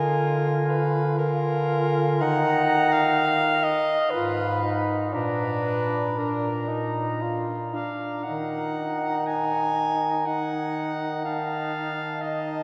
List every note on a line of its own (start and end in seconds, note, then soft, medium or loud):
0.00 2.22 D3 medium
0.00 1.18 F4 medium
0.00 0.71 A#4 medium
0.00 1.14 G#5 medium
0.70 1.17 B4 medium
1.18 2.23 F4 medium
1.18 2.23 A#4 loud
1.18 2.19 G#5 medium
2.21 3.85 D#3 medium
2.21 3.85 D#4 medium
2.21 2.94 F#5 loud
2.21 3.82 A#5 medium
2.92 3.65 F5 loud
3.63 4.12 D#5 medium
4.10 5.16 G#2 medium
4.10 4.59 F4 medium
4.10 4.83 B4 medium
4.10 5.16 B5 medium
4.63 5.15 D#4 medium
5.12 7.94 A#2 medium
5.12 6.16 D4 medium
5.12 6.20 B4 medium
5.12 6.18 A#5 medium
6.17 6.71 D4 medium
6.17 7.23 A#4 medium
6.17 7.90 A#5 medium
6.69 7.23 D#4 medium
7.22 7.76 F4 medium
7.73 8.25 D4 soft
7.73 8.25 F5 medium
8.24 12.63 D#3 medium
8.24 10.23 D#4 soft
8.24 9.28 F#5 medium
8.29 10.25 A#5 medium
9.27 10.27 G#5 medium
10.26 11.22 D#4 soft
10.26 11.24 F#5 medium
10.26 11.22 A#5 soft
11.25 12.04 D#4 soft
11.25 12.23 F5 medium
11.25 12.18 A5 medium
12.21 12.63 D#4 medium
12.21 12.63 D#5 medium
12.21 12.63 A5 medium